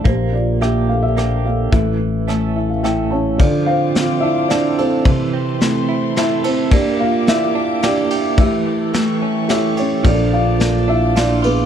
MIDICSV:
0, 0, Header, 1, 6, 480
1, 0, Start_track
1, 0, Key_signature, -1, "minor"
1, 0, Tempo, 555042
1, 43, Time_signature, 3, 2, 24, 8
1, 10080, End_track
2, 0, Start_track
2, 0, Title_t, "String section"
2, 0, Program_c, 0, 48
2, 2949, Note_on_c, 0, 77, 69
2, 2950, Note_on_c, 0, 72, 79
2, 2951, Note_on_c, 0, 86, 82
2, 4366, Note_off_c, 0, 72, 0
2, 4366, Note_off_c, 0, 77, 0
2, 4366, Note_off_c, 0, 86, 0
2, 4380, Note_on_c, 0, 76, 75
2, 4382, Note_on_c, 0, 60, 75
2, 4385, Note_on_c, 0, 69, 73
2, 4387, Note_on_c, 0, 84, 85
2, 5799, Note_off_c, 0, 60, 0
2, 5800, Note_off_c, 0, 69, 0
2, 5801, Note_off_c, 0, 84, 0
2, 5815, Note_on_c, 0, 58, 82
2, 5818, Note_on_c, 0, 67, 70
2, 5818, Note_on_c, 0, 86, 93
2, 7221, Note_off_c, 0, 76, 0
2, 7235, Note_off_c, 0, 58, 0
2, 7236, Note_off_c, 0, 67, 0
2, 7255, Note_on_c, 0, 79, 67
2, 7261, Note_on_c, 0, 69, 77
2, 7711, Note_off_c, 0, 86, 0
2, 7756, Note_on_c, 0, 85, 87
2, 8676, Note_off_c, 0, 79, 0
2, 8679, Note_off_c, 0, 69, 0
2, 8691, Note_on_c, 0, 81, 71
2, 8692, Note_off_c, 0, 85, 0
2, 8696, Note_on_c, 0, 86, 91
2, 10080, Note_off_c, 0, 81, 0
2, 10080, Note_off_c, 0, 86, 0
2, 10080, End_track
3, 0, Start_track
3, 0, Title_t, "Felt piano"
3, 0, Program_c, 1, 0
3, 0, Control_c, 1, 64, 127
3, 47, Note_on_c, 1, 58, 64
3, 54, Control_c, 1, 64, 0
3, 57, Note_on_c, 1, 72, 79
3, 77, Note_on_c, 1, 67, 63
3, 217, Control_c, 1, 64, 127
3, 271, Note_off_c, 1, 58, 0
3, 284, Note_on_c, 1, 58, 49
3, 284, Note_on_c, 1, 74, 73
3, 285, Note_off_c, 1, 67, 0
3, 298, Note_off_c, 1, 72, 0
3, 310, Note_on_c, 1, 65, 57
3, 516, Note_off_c, 1, 58, 0
3, 521, Note_off_c, 1, 65, 0
3, 528, Note_on_c, 1, 76, 82
3, 529, Note_on_c, 1, 58, 49
3, 532, Note_off_c, 1, 74, 0
3, 547, Note_on_c, 1, 67, 68
3, 750, Note_off_c, 1, 76, 0
3, 760, Note_off_c, 1, 67, 0
3, 766, Note_off_c, 1, 58, 0
3, 767, Note_on_c, 1, 77, 76
3, 779, Note_on_c, 1, 58, 49
3, 789, Note_on_c, 1, 69, 56
3, 886, Note_on_c, 1, 76, 96
3, 890, Note_off_c, 1, 69, 0
3, 890, Note_off_c, 1, 77, 0
3, 908, Note_on_c, 1, 67, 63
3, 1002, Note_off_c, 1, 58, 0
3, 1015, Note_on_c, 1, 58, 49
3, 1233, Note_off_c, 1, 67, 0
3, 1240, Note_off_c, 1, 58, 0
3, 1253, Note_on_c, 1, 58, 47
3, 1258, Note_off_c, 1, 76, 0
3, 1259, Note_on_c, 1, 77, 68
3, 1275, Note_on_c, 1, 69, 56
3, 1483, Note_off_c, 1, 58, 0
3, 1486, Note_off_c, 1, 69, 0
3, 1486, Note_on_c, 1, 76, 68
3, 1498, Note_on_c, 1, 57, 60
3, 1499, Control_c, 1, 64, 0
3, 1500, Note_off_c, 1, 77, 0
3, 1504, Note_on_c, 1, 69, 57
3, 1651, Control_c, 1, 64, 127
3, 1727, Note_on_c, 1, 64, 48
3, 1958, Note_off_c, 1, 57, 0
3, 1971, Note_on_c, 1, 57, 50
3, 2201, Note_off_c, 1, 76, 0
3, 2202, Note_off_c, 1, 64, 0
3, 2214, Note_on_c, 1, 76, 54
3, 2215, Note_on_c, 1, 64, 47
3, 2324, Note_off_c, 1, 76, 0
3, 2332, Note_on_c, 1, 77, 53
3, 2424, Note_off_c, 1, 69, 0
3, 2438, Note_off_c, 1, 57, 0
3, 2443, Note_off_c, 1, 77, 0
3, 2449, Note_on_c, 1, 79, 55
3, 2450, Note_on_c, 1, 76, 81
3, 2451, Note_on_c, 1, 57, 47
3, 2458, Note_off_c, 1, 64, 0
3, 2471, Note_on_c, 1, 64, 64
3, 2674, Note_off_c, 1, 79, 0
3, 2677, Note_off_c, 1, 64, 0
3, 2688, Note_on_c, 1, 81, 57
3, 2690, Note_on_c, 1, 64, 45
3, 2693, Note_on_c, 1, 73, 73
3, 2699, Note_off_c, 1, 76, 0
3, 2710, Note_on_c, 1, 61, 52
3, 2913, Note_off_c, 1, 81, 0
3, 2918, Note_off_c, 1, 57, 0
3, 2924, Note_off_c, 1, 64, 0
3, 2925, Note_off_c, 1, 61, 0
3, 2925, Note_on_c, 1, 74, 87
3, 2936, Note_on_c, 1, 65, 71
3, 2938, Note_on_c, 1, 50, 73
3, 2940, Note_off_c, 1, 73, 0
3, 2943, Note_on_c, 1, 69, 65
3, 2945, Control_c, 1, 64, 0
3, 2946, Note_on_c, 1, 62, 66
3, 3114, Control_c, 1, 64, 127
3, 3152, Note_off_c, 1, 74, 0
3, 3158, Note_off_c, 1, 65, 0
3, 3162, Note_off_c, 1, 69, 0
3, 3163, Note_off_c, 1, 62, 0
3, 3169, Note_on_c, 1, 77, 97
3, 3185, Note_on_c, 1, 65, 68
3, 3185, Note_on_c, 1, 72, 75
3, 3414, Note_off_c, 1, 65, 0
3, 3421, Note_on_c, 1, 60, 48
3, 3425, Note_on_c, 1, 62, 46
3, 3427, Note_on_c, 1, 65, 55
3, 3626, Note_off_c, 1, 72, 0
3, 3635, Note_on_c, 1, 76, 96
3, 3654, Note_on_c, 1, 64, 74
3, 3665, Note_off_c, 1, 77, 0
3, 3876, Note_off_c, 1, 64, 0
3, 3877, Note_on_c, 1, 74, 91
3, 3881, Note_off_c, 1, 62, 0
3, 3891, Note_off_c, 1, 76, 0
3, 3894, Note_on_c, 1, 62, 75
3, 4107, Note_off_c, 1, 74, 0
3, 4116, Note_off_c, 1, 62, 0
3, 4136, Note_off_c, 1, 60, 0
3, 4137, Note_on_c, 1, 72, 87
3, 4149, Note_on_c, 1, 60, 67
3, 4151, Note_on_c, 1, 69, 63
3, 4157, Note_on_c, 1, 64, 68
3, 4340, Note_off_c, 1, 50, 0
3, 4350, Note_off_c, 1, 65, 0
3, 4373, Note_on_c, 1, 48, 73
3, 4382, Control_c, 1, 64, 0
3, 4540, Control_c, 1, 64, 127
3, 4840, Note_off_c, 1, 64, 0
3, 4842, Note_off_c, 1, 60, 0
3, 4850, Note_on_c, 1, 57, 48
3, 4853, Note_on_c, 1, 64, 57
3, 4855, Note_on_c, 1, 60, 44
3, 5297, Note_off_c, 1, 72, 0
3, 5304, Note_off_c, 1, 69, 0
3, 5338, Note_on_c, 1, 76, 97
3, 5341, Note_off_c, 1, 64, 0
3, 5354, Note_on_c, 1, 64, 77
3, 5565, Note_off_c, 1, 64, 0
3, 5574, Note_on_c, 1, 72, 80
3, 5580, Note_off_c, 1, 76, 0
3, 5581, Note_off_c, 1, 60, 0
3, 5594, Note_on_c, 1, 60, 63
3, 5773, Note_off_c, 1, 48, 0
3, 5779, Note_off_c, 1, 57, 0
3, 5794, Note_off_c, 1, 72, 0
3, 5805, Note_off_c, 1, 60, 0
3, 5812, Note_on_c, 1, 58, 75
3, 5816, Note_on_c, 1, 74, 96
3, 5819, Control_c, 1, 64, 0
3, 5830, Note_on_c, 1, 67, 70
3, 5831, Note_on_c, 1, 62, 70
3, 5990, Control_c, 1, 64, 127
3, 6035, Note_off_c, 1, 74, 0
3, 6042, Note_off_c, 1, 67, 0
3, 6043, Note_off_c, 1, 62, 0
3, 6054, Note_on_c, 1, 77, 92
3, 6076, Note_on_c, 1, 65, 72
3, 6283, Note_on_c, 1, 64, 49
3, 6285, Note_off_c, 1, 65, 0
3, 6287, Note_on_c, 1, 67, 45
3, 6289, Note_on_c, 1, 74, 57
3, 6297, Note_off_c, 1, 64, 0
3, 6297, Note_off_c, 1, 77, 0
3, 6300, Note_on_c, 1, 76, 113
3, 6310, Note_on_c, 1, 64, 75
3, 6745, Note_off_c, 1, 64, 0
3, 6763, Note_off_c, 1, 74, 0
3, 6776, Note_on_c, 1, 74, 98
3, 6781, Note_off_c, 1, 67, 0
3, 6787, Note_off_c, 1, 76, 0
3, 6794, Note_on_c, 1, 62, 69
3, 6794, Note_on_c, 1, 67, 67
3, 7213, Note_off_c, 1, 58, 0
3, 7217, Note_off_c, 1, 74, 0
3, 7227, Note_off_c, 1, 62, 0
3, 7227, Note_off_c, 1, 67, 0
3, 7243, Note_on_c, 1, 57, 71
3, 7256, Control_c, 1, 64, 0
3, 7267, Note_on_c, 1, 76, 100
3, 7281, Note_on_c, 1, 64, 68
3, 7285, Note_on_c, 1, 67, 69
3, 7420, Control_c, 1, 64, 127
3, 7707, Note_off_c, 1, 57, 0
3, 7720, Note_on_c, 1, 57, 65
3, 7737, Control_c, 1, 64, 0
3, 7870, Control_c, 1, 64, 127
3, 8181, Note_off_c, 1, 76, 0
3, 8188, Note_off_c, 1, 64, 0
3, 8188, Note_off_c, 1, 67, 0
3, 8201, Note_on_c, 1, 67, 52
3, 8202, Note_on_c, 1, 69, 46
3, 8207, Note_on_c, 1, 73, 56
3, 8222, Note_on_c, 1, 76, 90
3, 8241, Note_on_c, 1, 64, 68
3, 8448, Note_off_c, 1, 64, 0
3, 8448, Note_off_c, 1, 73, 0
3, 8461, Note_off_c, 1, 76, 0
3, 8461, Note_on_c, 1, 73, 77
3, 8485, Note_on_c, 1, 61, 61
3, 8654, Note_off_c, 1, 57, 0
3, 8669, Note_off_c, 1, 67, 0
3, 8670, Note_off_c, 1, 69, 0
3, 8677, Note_on_c, 1, 58, 72
3, 8690, Note_off_c, 1, 61, 0
3, 8697, Note_on_c, 1, 74, 95
3, 8698, Control_c, 1, 64, 0
3, 8700, Note_off_c, 1, 73, 0
3, 8703, Note_on_c, 1, 69, 66
3, 8712, Note_on_c, 1, 62, 61
3, 8714, Note_on_c, 1, 65, 66
3, 8825, Control_c, 1, 64, 127
3, 8915, Note_off_c, 1, 74, 0
3, 8918, Note_off_c, 1, 69, 0
3, 8923, Note_off_c, 1, 62, 0
3, 8924, Note_off_c, 1, 65, 0
3, 8933, Note_on_c, 1, 77, 90
3, 8946, Note_on_c, 1, 65, 74
3, 8949, Note_on_c, 1, 74, 70
3, 9155, Note_off_c, 1, 74, 0
3, 9159, Note_on_c, 1, 69, 48
3, 9159, Note_on_c, 1, 70, 44
3, 9168, Note_on_c, 1, 74, 54
3, 9376, Note_off_c, 1, 77, 0
3, 9382, Note_off_c, 1, 65, 0
3, 9416, Note_on_c, 1, 76, 91
3, 9433, Note_on_c, 1, 64, 66
3, 9634, Note_off_c, 1, 76, 0
3, 9643, Note_off_c, 1, 64, 0
3, 9654, Note_off_c, 1, 74, 0
3, 9667, Note_on_c, 1, 74, 88
3, 9686, Note_on_c, 1, 62, 71
3, 9890, Note_off_c, 1, 62, 0
3, 9897, Note_on_c, 1, 71, 97
3, 9902, Note_off_c, 1, 74, 0
3, 9911, Note_on_c, 1, 68, 65
3, 9912, Note_on_c, 1, 59, 63
3, 9913, Note_on_c, 1, 62, 60
3, 10080, Note_off_c, 1, 58, 0
3, 10080, Note_off_c, 1, 59, 0
3, 10080, Note_off_c, 1, 62, 0
3, 10080, Note_off_c, 1, 68, 0
3, 10080, Note_off_c, 1, 69, 0
3, 10080, Note_off_c, 1, 70, 0
3, 10080, Note_off_c, 1, 71, 0
3, 10080, End_track
4, 0, Start_track
4, 0, Title_t, "Clean electric guitar"
4, 0, Program_c, 2, 27
4, 0, Note_on_c, 2, 62, 51
4, 0, Note_on_c, 2, 69, 52
4, 39, Note_on_c, 2, 58, 73
4, 92, Note_off_c, 2, 62, 0
4, 97, Note_off_c, 2, 69, 0
4, 522, Note_off_c, 2, 58, 0
4, 530, Note_on_c, 2, 58, 48
4, 535, Note_on_c, 2, 62, 50
4, 537, Note_on_c, 2, 67, 63
4, 998, Note_off_c, 2, 58, 0
4, 1005, Note_off_c, 2, 62, 0
4, 1008, Note_on_c, 2, 58, 48
4, 1012, Note_off_c, 2, 67, 0
4, 1015, Note_on_c, 2, 62, 47
4, 1022, Note_on_c, 2, 67, 53
4, 1491, Note_on_c, 2, 52, 72
4, 1536, Note_off_c, 2, 58, 0
4, 1540, Note_off_c, 2, 62, 0
4, 1543, Note_off_c, 2, 67, 0
4, 1969, Note_on_c, 2, 57, 48
4, 1975, Note_on_c, 2, 61, 51
4, 1984, Note_on_c, 2, 69, 58
4, 2445, Note_off_c, 2, 57, 0
4, 2449, Note_off_c, 2, 61, 0
4, 2455, Note_on_c, 2, 57, 43
4, 2456, Note_off_c, 2, 69, 0
4, 2459, Note_on_c, 2, 61, 48
4, 2466, Note_on_c, 2, 69, 55
4, 2934, Note_off_c, 2, 52, 0
4, 2938, Note_on_c, 2, 53, 78
4, 2983, Note_off_c, 2, 57, 0
4, 2985, Note_off_c, 2, 61, 0
4, 2988, Note_off_c, 2, 69, 0
4, 3181, Note_on_c, 2, 60, 52
4, 3657, Note_on_c, 2, 62, 56
4, 3883, Note_off_c, 2, 60, 0
4, 3887, Note_off_c, 2, 62, 0
4, 3893, Note_on_c, 2, 60, 58
4, 3898, Note_on_c, 2, 62, 54
4, 3903, Note_on_c, 2, 69, 56
4, 4128, Note_off_c, 2, 69, 0
4, 4139, Note_on_c, 2, 69, 67
4, 4369, Note_off_c, 2, 53, 0
4, 4372, Note_on_c, 2, 52, 76
4, 4420, Note_off_c, 2, 60, 0
4, 4422, Note_off_c, 2, 62, 0
4, 4423, Note_off_c, 2, 69, 0
4, 4612, Note_on_c, 2, 60, 53
4, 5091, Note_on_c, 2, 64, 58
4, 5326, Note_off_c, 2, 60, 0
4, 5336, Note_on_c, 2, 60, 55
4, 5339, Note_off_c, 2, 64, 0
4, 5342, Note_on_c, 2, 64, 60
4, 5347, Note_on_c, 2, 69, 63
4, 5559, Note_off_c, 2, 69, 0
4, 5570, Note_on_c, 2, 69, 65
4, 5809, Note_off_c, 2, 60, 0
4, 5812, Note_on_c, 2, 58, 85
4, 5838, Note_off_c, 2, 52, 0
4, 5856, Note_off_c, 2, 69, 0
4, 6041, Note_off_c, 2, 58, 0
4, 6051, Note_on_c, 2, 58, 55
4, 6077, Note_off_c, 2, 64, 0
4, 6531, Note_on_c, 2, 62, 64
4, 6758, Note_off_c, 2, 58, 0
4, 6763, Note_off_c, 2, 62, 0
4, 6769, Note_on_c, 2, 58, 57
4, 6774, Note_on_c, 2, 62, 61
4, 6784, Note_on_c, 2, 67, 64
4, 7002, Note_off_c, 2, 67, 0
4, 7013, Note_on_c, 2, 67, 72
4, 7246, Note_on_c, 2, 52, 82
4, 7295, Note_off_c, 2, 58, 0
4, 7297, Note_off_c, 2, 62, 0
4, 7297, Note_off_c, 2, 67, 0
4, 7493, Note_on_c, 2, 57, 55
4, 7721, Note_off_c, 2, 52, 0
4, 7731, Note_on_c, 2, 52, 88
4, 7974, Note_on_c, 2, 61, 61
4, 8198, Note_off_c, 2, 61, 0
4, 8202, Note_off_c, 2, 57, 0
4, 8205, Note_on_c, 2, 57, 59
4, 8209, Note_on_c, 2, 61, 53
4, 8217, Note_on_c, 2, 67, 60
4, 8439, Note_off_c, 2, 67, 0
4, 8449, Note_on_c, 2, 67, 63
4, 8672, Note_off_c, 2, 52, 0
4, 8676, Note_on_c, 2, 53, 80
4, 8734, Note_off_c, 2, 57, 0
4, 8735, Note_off_c, 2, 61, 0
4, 8735, Note_off_c, 2, 67, 0
4, 9408, Note_on_c, 2, 62, 59
4, 9638, Note_off_c, 2, 62, 0
4, 9648, Note_on_c, 2, 62, 60
4, 9658, Note_on_c, 2, 65, 61
4, 9869, Note_off_c, 2, 65, 0
4, 9879, Note_on_c, 2, 65, 67
4, 10080, Note_off_c, 2, 53, 0
4, 10080, Note_off_c, 2, 62, 0
4, 10080, Note_off_c, 2, 65, 0
4, 10080, End_track
5, 0, Start_track
5, 0, Title_t, "Fingered electric bass"
5, 0, Program_c, 3, 33
5, 44, Note_on_c, 3, 34, 71
5, 1459, Note_off_c, 3, 34, 0
5, 1488, Note_on_c, 3, 33, 66
5, 2904, Note_off_c, 3, 33, 0
5, 8689, Note_on_c, 3, 34, 74
5, 10080, Note_off_c, 3, 34, 0
5, 10080, End_track
6, 0, Start_track
6, 0, Title_t, "Drums"
6, 42, Note_on_c, 9, 42, 50
6, 46, Note_on_c, 9, 36, 90
6, 129, Note_off_c, 9, 42, 0
6, 133, Note_off_c, 9, 36, 0
6, 529, Note_on_c, 9, 42, 38
6, 539, Note_on_c, 9, 37, 54
6, 616, Note_off_c, 9, 42, 0
6, 625, Note_off_c, 9, 37, 0
6, 1012, Note_on_c, 9, 42, 43
6, 1022, Note_on_c, 9, 37, 62
6, 1099, Note_off_c, 9, 42, 0
6, 1108, Note_off_c, 9, 37, 0
6, 1490, Note_on_c, 9, 42, 48
6, 1492, Note_on_c, 9, 36, 89
6, 1576, Note_off_c, 9, 42, 0
6, 1578, Note_off_c, 9, 36, 0
6, 1974, Note_on_c, 9, 42, 45
6, 1983, Note_on_c, 9, 37, 56
6, 2060, Note_off_c, 9, 42, 0
6, 2070, Note_off_c, 9, 37, 0
6, 2456, Note_on_c, 9, 42, 44
6, 2465, Note_on_c, 9, 37, 57
6, 2542, Note_off_c, 9, 42, 0
6, 2552, Note_off_c, 9, 37, 0
6, 2937, Note_on_c, 9, 36, 95
6, 2939, Note_on_c, 9, 51, 60
6, 3024, Note_off_c, 9, 36, 0
6, 3026, Note_off_c, 9, 51, 0
6, 3416, Note_on_c, 9, 51, 49
6, 3425, Note_on_c, 9, 38, 72
6, 3502, Note_off_c, 9, 51, 0
6, 3512, Note_off_c, 9, 38, 0
6, 3889, Note_on_c, 9, 51, 52
6, 3899, Note_on_c, 9, 38, 69
6, 3976, Note_off_c, 9, 51, 0
6, 3985, Note_off_c, 9, 38, 0
6, 4136, Note_on_c, 9, 51, 48
6, 4223, Note_off_c, 9, 51, 0
6, 4365, Note_on_c, 9, 51, 53
6, 4371, Note_on_c, 9, 36, 101
6, 4452, Note_off_c, 9, 51, 0
6, 4457, Note_off_c, 9, 36, 0
6, 4847, Note_on_c, 9, 51, 44
6, 4856, Note_on_c, 9, 38, 68
6, 4933, Note_off_c, 9, 51, 0
6, 4943, Note_off_c, 9, 38, 0
6, 5328, Note_on_c, 9, 51, 50
6, 5338, Note_on_c, 9, 38, 76
6, 5415, Note_off_c, 9, 51, 0
6, 5424, Note_off_c, 9, 38, 0
6, 5568, Note_on_c, 9, 51, 57
6, 5655, Note_off_c, 9, 51, 0
6, 5803, Note_on_c, 9, 51, 59
6, 5807, Note_on_c, 9, 36, 98
6, 5890, Note_off_c, 9, 51, 0
6, 5893, Note_off_c, 9, 36, 0
6, 6286, Note_on_c, 9, 51, 51
6, 6296, Note_on_c, 9, 38, 68
6, 6373, Note_off_c, 9, 51, 0
6, 6382, Note_off_c, 9, 38, 0
6, 6766, Note_on_c, 9, 51, 53
6, 6775, Note_on_c, 9, 38, 77
6, 6852, Note_off_c, 9, 51, 0
6, 6862, Note_off_c, 9, 38, 0
6, 7008, Note_on_c, 9, 51, 56
6, 7095, Note_off_c, 9, 51, 0
6, 7243, Note_on_c, 9, 51, 55
6, 7246, Note_on_c, 9, 36, 107
6, 7330, Note_off_c, 9, 51, 0
6, 7333, Note_off_c, 9, 36, 0
6, 7726, Note_on_c, 9, 51, 44
6, 7735, Note_on_c, 9, 38, 68
6, 7812, Note_off_c, 9, 51, 0
6, 7822, Note_off_c, 9, 38, 0
6, 8205, Note_on_c, 9, 51, 54
6, 8214, Note_on_c, 9, 38, 77
6, 8291, Note_off_c, 9, 51, 0
6, 8301, Note_off_c, 9, 38, 0
6, 8447, Note_on_c, 9, 51, 51
6, 8533, Note_off_c, 9, 51, 0
6, 8685, Note_on_c, 9, 51, 57
6, 8688, Note_on_c, 9, 36, 96
6, 8772, Note_off_c, 9, 51, 0
6, 8774, Note_off_c, 9, 36, 0
6, 9165, Note_on_c, 9, 51, 45
6, 9175, Note_on_c, 9, 38, 66
6, 9252, Note_off_c, 9, 51, 0
6, 9261, Note_off_c, 9, 38, 0
6, 9651, Note_on_c, 9, 51, 57
6, 9661, Note_on_c, 9, 38, 71
6, 9738, Note_off_c, 9, 51, 0
6, 9747, Note_off_c, 9, 38, 0
6, 9890, Note_on_c, 9, 51, 52
6, 9976, Note_off_c, 9, 51, 0
6, 10080, End_track
0, 0, End_of_file